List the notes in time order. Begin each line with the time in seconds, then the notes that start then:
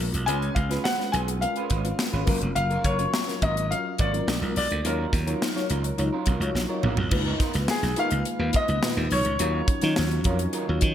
Already playing: G#3 B3 F4 A#4
0.00 open hi-hat
0.13 B1, muted clean electric guitar stroke, closed hi-hat
0.26 C#2 G#3 C#4 F4 B4 G#5, closed hi-hat
0.42 closed hi-hat
0.55 C#2 F5, muted clean electric guitar stroke, kick, closed hi-hat
0.69 G#3 C#4 F4 B4, snare, closed hi-hat
0.84 F#5, snare
0.98 G#3 C#4 F4 B4, muted clean electric guitar stroke, snare
1.12 B1 G#3 C#4 F4 B4 G#5, closed hi-hat
1.28 muted clean electric guitar stroke, closed hi-hat
1.41 G#3 C#4 F4 A#4 F5, muted clean electric guitar stroke, closed hi-hat
1.56 G#3 C#4 F4 B4, closed hi-hat
1.70 G#1 G#3 C#4 F4 B4, kick, closed hi-hat
1.83 G#3 C#4 F4 B4, muted clean electric guitar stroke, closed hi-hat
1.99 muted clean electric guitar stroke, snare
2.12 G#1 G#3 C#4 F4 B4
2.26 F#1 F#3 A#3 C#4 F4 A#4, kick, open hi-hat
2.41 F1, muted clean electric guitar stroke, closed hi-hat
2.55 F#1 F5, muted clean electric guitar stroke, closed hi-hat
2.70 A#3 C#4 F4 A#4, closed hi-hat
2.84 F#1 A#3 C#4 F4 A#4 C#5, kick, closed hi-hat
2.99 F#3 C#4 F4 A#4, muted clean electric guitar stroke, closed hi-hat
3.14 muted clean electric guitar stroke, snare
3.27 F#3 C#4 F4 A#4, muted clean electric guitar stroke, snare, closed hi-hat
3.42 G#1 A#3 C#4 F4 A#4 D#5, kick, closed hi-hat
3.56 muted clean electric guitar stroke, closed hi-hat
3.70 F#3 C#4 F4 A#4 F5, closed hi-hat
3.85 muted clean electric guitar stroke
3.98 G#1 A#3 C#4 F4 C#5 D5, kick, closed hi-hat
4.12 F#3 C#4 F4 A#4, muted clean electric guitar stroke, closed hi-hat
4.27 A#1 G#3 D4 F4 A#4, muted clean electric guitar stroke, snare
4.41 B1 G#3 D4 F4 A#4, muted clean electric guitar stroke
4.56 B1 D5, open hi-hat
4.70 D2, muted clean electric guitar stroke, closed hi-hat
4.84 D#2 F#3 C#4 D#4 F4 A#4 C#5, closed hi-hat
5.13 D#2, muted clean electric guitar stroke, kick, snare, closed hi-hat
5.26 F#3 C#4 D#4 F4 A#4 C#5, closed hi-hat
5.42 snare
5.55 F#3 D#4 F4 C#5, muted clean electric guitar stroke, snare
5.70 C#2 F#3 C#4 F4 A#4, closed hi-hat
5.84 muted clean electric guitar stroke, closed hi-hat
5.97 C#2 F#3 D#4 F4 C#5, muted clean electric guitar stroke, closed hi-hat
6.13 F#3 C#4 F4 A#4
6.26 B1 F#3 C#4 F4 A#4, kick, closed hi-hat
6.40 C#2 F#3 D#4 F4 C#5, muted clean electric guitar stroke, closed hi-hat
6.55 A#1, muted clean electric guitar stroke, snare
6.69 F#3 C#4 D#4 F4 A#4 C#5
6.83 A#1 F#3 C#4 F4 A#4, mid tom
6.97 B1, muted clean electric guitar stroke, floor tom
7.11 C#2 A#3 D#4 F4 B4, muted clean electric guitar stroke, kick, crash
7.26 B3 D#4 F4 A#4
7.40 B3 D#4 F4 A#4, kick, snare, closed hi-hat
7.54 C#2 A#3 D#4 F4 B4, muted clean electric guitar stroke, snare, closed hi-hat
7.68 G#4, muted clean electric guitar stroke, snare
7.83 B1, muted clean electric guitar stroke, snare, closed hi-hat
7.96 A#3 B3 D#4 F4 A#4 B4 F5, closed hi-hat
8.11 C#2, muted clean electric guitar stroke, closed hi-hat
8.25 closed hi-hat
8.39 D#2 A#3 D#4 F4 B4, muted clean electric guitar stroke
8.53 B3 D#4 F4 B4 D#5, kick, closed hi-hat
8.68 C#2, muted clean electric guitar stroke, closed hi-hat
8.82 A#2 D#4 F4 B4, muted clean electric guitar stroke, snare
8.96 D#2, muted clean electric guitar stroke
9.11 B1 C#5, open hi-hat
9.25 C#2, muted clean electric guitar stroke, closed hi-hat
9.39 D#2 F#3 C#4 D#4 F4 A#4 C#5, closed hi-hat
9.68 muted clean electric guitar stroke, kick, closed hi-hat
9.82 D#3 F#3 C#4 D#4 F4 A#4 C#5, snare, closed hi-hat
9.96 D#2, snare
10.11 muted clean electric guitar stroke, closed hi-hat
10.24 F2 F#3 C#4 D#4 F4 A#4 C#5, kick, closed hi-hat
10.39 muted clean electric guitar stroke, closed hi-hat
10.53 F#3 C#4 F4 A#4, closed hi-hat
10.67 D#2 F#3 D#4 F4 C#5, muted clean electric guitar stroke
10.81 D#3, muted clean electric guitar stroke, kick, closed hi-hat